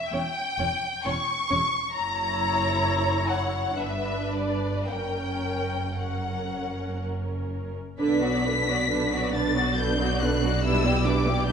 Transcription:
0.11 0.19 E1 soft
0.11 0.20 E2 medium
0.11 0.20 C#4 soft
0.11 0.20 C#5 soft
0.11 1.05 G5 medium
0.11 1.06 G5 medium
0.58 0.66 E1 soft
0.58 0.67 E2 medium
0.58 0.67 C#4 soft
0.58 0.67 C#5 soft
1.04 1.14 E1 soft
1.04 1.14 E2 soft
1.04 1.13 C#4 soft
1.04 1.12 C#5 soft
1.04 1.93 C#6 medium
1.04 1.94 C#6 medium
1.50 1.59 E1 medium
1.50 1.59 E2 soft
1.50 1.58 C#4 soft
1.50 1.58 C#5 soft
1.93 3.75 F#1 medium
1.93 3.74 F#2 medium
1.93 3.74 E4 medium
1.93 3.74 C#5 medium
1.93 3.27 A#5 medium
3.29 3.78 F#5 medium
3.29 3.79 F#5 soft
3.78 4.89 G1 soft
3.78 4.88 G2 soft
3.78 4.90 D4 soft
3.78 4.88 B4 soft
3.78 4.33 E5 soft
3.78 4.33 E5 medium
4.32 4.90 D5 soft
4.32 4.91 D5 soft
4.89 7.74 F#1 soft
4.89 7.74 F#2 soft
4.89 5.96 C#4 soft
4.89 5.96 A#4 soft
4.89 5.96 G5 soft
4.89 5.99 G5 medium
5.97 7.74 C#4 soft
5.97 7.74 A#4 soft
5.97 7.01 F#5 soft
7.98 11.52 B1 medium
7.98 11.52 B2 medium
7.98 8.20 D3 medium
7.98 8.20 D4 soft
7.98 8.20 D4 medium
7.98 8.20 B4 medium
7.98 9.31 B6 medium
8.21 8.45 F#3 soft
8.21 8.45 B3 medium
8.21 8.45 F#4 soft
8.21 8.45 D5 soft
8.44 8.68 D3 soft
8.44 8.67 D4 soft
8.44 8.68 D4 soft
8.44 8.67 B4 soft
8.67 8.90 F#3 soft
8.67 8.90 B3 soft
8.67 8.91 F#4 soft
8.67 8.90 D5 soft
8.88 9.10 D3 soft
8.88 9.09 D4 soft
8.88 9.10 D4 soft
8.88 9.10 B4 soft
9.11 9.34 F#3 soft
9.11 9.34 B3 soft
9.11 9.34 F#4 soft
9.11 9.34 D5 medium
9.33 9.55 D3 soft
9.33 9.55 D4 medium
9.33 9.56 D4 soft
9.33 9.56 B4 soft
9.33 9.78 A6 medium
9.54 9.77 F#3 soft
9.54 9.77 B3 soft
9.54 9.77 F#4 soft
9.54 9.77 D5 soft
9.76 9.98 D3 soft
9.76 9.98 D4 medium
9.76 9.98 B4 soft
9.76 10.20 G6 medium
9.99 10.21 F#3 medium
9.99 10.21 B3 soft
9.99 10.22 F#4 soft
9.99 10.22 D5 soft
10.20 10.43 D3 medium
10.20 10.43 D4 medium
10.20 10.44 D4 medium
10.20 10.44 B4 medium
10.20 10.63 F#6 medium
10.43 10.64 F#3 soft
10.43 10.64 B3 soft
10.43 10.65 F#4 soft
10.43 10.64 D5 soft
10.63 10.83 G3 medium
10.63 10.83 D4 medium
10.63 10.83 E4 medium
10.63 10.83 B4 medium
10.63 11.05 E6 medium
10.84 11.05 B3 medium
10.84 11.06 E4 medium
10.84 11.06 G4 medium
10.84 11.06 D5 medium
11.04 11.26 G3 soft
11.04 11.26 D4 soft
11.04 11.27 E4 soft
11.04 11.27 B4 medium
11.04 11.47 D6 medium
11.26 11.47 B3 medium
11.26 11.47 E4 medium
11.26 11.48 G4 medium
11.26 11.48 D5 medium
11.46 11.52 G3 soft
11.46 11.52 D4 soft
11.46 11.52 E4 medium
11.46 11.52 B4 medium
11.46 11.52 G6 medium

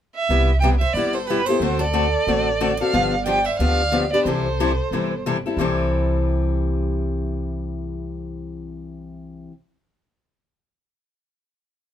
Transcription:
0.16 0.59 E5 medium
0.29 0.82 C2 medium
0.29 0.50 C3 medium
0.29 0.50 G3 medium
0.29 0.50 B3 medium
0.29 0.51 E4 medium
0.29 0.51 G4 medium
0.60 0.74 C3 medium
0.60 0.74 G3 medium
0.60 0.67 E5 medium
0.60 0.69 G5 medium
0.64 0.74 B3 medium
0.64 0.74 E4 medium
0.64 0.74 G4 medium
0.79 0.94 C5 medium
0.79 0.95 E5 medium
0.93 1.47 G1 medium
0.93 1.16 C3 medium
0.93 1.16 G3 medium
0.93 1.17 E4 medium
0.93 1.13 B4 medium
0.93 1.16 D5 medium
0.97 1.17 B3 medium
0.97 1.17 G4 medium
1.13 1.27 A4 medium
1.13 1.29 C5 medium
1.27 1.40 C3 medium
1.27 1.40 G3 medium
1.27 1.40 B3 medium
1.27 1.40 E4 medium
1.27 1.46 G4 medium
1.27 1.40 G4 medium
1.27 1.47 B4 medium
1.46 1.61 E4 soft
1.46 1.61 G4 soft
1.46 1.78 A4 medium
1.46 1.82 C5 medium
1.50 1.62 B3 soft
1.60 2.13 D2 medium
1.60 1.82 D3 medium
1.60 1.82 A3 medium
1.60 1.82 C4 medium
1.60 1.82 F#4 medium
1.60 1.82 A4 medium
1.79 2.77 A4 medium
1.79 2.80 D5 medium
1.93 2.05 D3 medium
1.93 2.05 A3 medium
1.93 2.05 C4 medium
1.93 2.05 F#4 medium
1.93 2.05 A4 medium
2.27 2.80 A1 medium
2.27 2.48 D3 medium
2.27 2.48 A3 medium
2.27 2.48 C4 medium
2.27 2.48 F#4 medium
2.27 2.48 A4 medium
2.60 2.71 D3 medium
2.60 2.72 A3 medium
2.60 2.72 C4 medium
2.60 2.72 F#4 medium
2.60 2.72 A4 medium
2.77 2.93 F#4 soft
2.77 2.93 A4 soft
2.77 3.22 D5 medium
2.77 3.24 F5 medium
2.82 2.93 C4 soft
2.93 3.46 G1 medium
2.93 3.14 D3 medium
2.93 3.14 F3 medium
2.93 3.14 B3 medium
2.93 3.14 D4 medium
2.93 3.15 G4 medium
3.26 3.37 D3 medium
3.26 3.38 F3 medium
3.26 3.38 B3 medium
3.26 3.38 D4 medium
3.26 3.38 G4 medium
3.26 3.44 D5 medium
3.26 3.47 G5 medium
3.44 3.58 C5 medium
3.44 3.59 E5 medium
3.59 4.12 D2 medium
3.59 3.80 D3 medium
3.59 3.81 F3 medium
3.59 3.81 B3 medium
3.59 3.81 D4 medium
3.59 3.81 G4 medium
3.59 4.09 D5 medium
3.59 4.09 F5 medium
3.92 4.03 D3 medium
3.92 4.03 F3 medium
3.92 4.04 B3 medium
3.92 4.04 D4 medium
3.92 4.04 G4 medium
4.13 4.26 B3 soft
4.13 4.26 D4 medium
4.13 4.25 G4 soft
4.13 4.25 B4 medium
4.13 4.25 D5 medium
4.25 4.78 C2 medium
4.25 4.47 C3 medium
4.25 4.47 E3 medium
4.25 4.47 G3 medium
4.25 4.47 C4 medium
4.25 4.47 E4 medium
4.25 5.21 A4 medium
4.25 4.47 A4 medium
4.25 5.21 C5 medium
4.60 4.70 C3 medium
4.60 4.70 E3 medium
4.60 4.70 G3 medium
4.60 4.71 C4 medium
4.60 4.71 E4 medium
4.60 4.70 A4 medium
4.91 5.44 G1 medium
4.91 5.12 C3 medium
4.91 5.13 E3 medium
4.91 5.13 G3 medium
4.91 5.13 C4 medium
4.91 5.13 E4 medium
4.91 5.13 A4 medium
5.26 5.36 C3 medium
5.26 5.36 E3 medium
5.26 5.37 G3 medium
5.26 5.36 C4 medium
5.26 5.37 E4 medium
5.26 5.37 A4 medium
5.46 5.58 G3 soft
5.46 5.58 C4 soft
5.46 5.58 E4 soft
5.46 5.58 A4 soft
5.57 9.45 C2 medium
5.57 9.51 C3 medium
5.57 9.52 E3 medium
5.57 9.52 G3 medium
5.57 9.53 C4 medium
5.61 9.53 E4 medium
5.61 9.53 A4 medium

